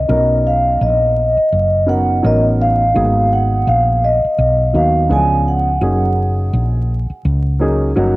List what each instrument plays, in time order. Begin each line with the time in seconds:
Already playing: vibraphone D#5
0.08 fretless electric bass B1, grand piano F#3 B3 C#4 D#4 A#4
0.47 vibraphone F5
0.81 fretless electric bass A#1, vibraphone D#5
1.37 muted fretless electric bass stroke
1.52 fretless electric bass F#1
1.87 grand piano F#3 B3 C#4 D#4 A#4, vibraphone F#5
2.23 fretless electric bass A1, grand piano F#3 B3 C#4 D#4 A#4, vibraphone D#5
2.62 vibraphone F5
2.94 fretless electric bass G#1, grand piano F#3 A#3 B3 D#4 G#4
3.33 vibraphone F#5
3.67 fretless electric bass A#1, vibraphone F5
4.05 vibraphone D#5
4.24 muted fretless electric bass stroke
4.38 fretless electric bass B1
4.73 fretless electric bass D#2, grand piano F#3 A#3 B3 D#4 F#4, vibraphone F5
5.09 fretless electric bass C#2, grand piano E3 B3 C#4 D4 G#4, vibraphone G#5
5.15 grand piano F3
5.48 vibraphone F#5
5.81 fretless electric bass F#1, grand piano F#3 A#3 C#4 D#4 G#4
6.53 fretless electric bass A#1
7.10 muted fretless electric bass stroke
7.25 fretless electric bass C#2
7.59 grand piano F#3 A#3 C#4 D#4 G#4
7.96 fretless electric bass G1, grand piano F#3 A#3 C#4 D#4 F#4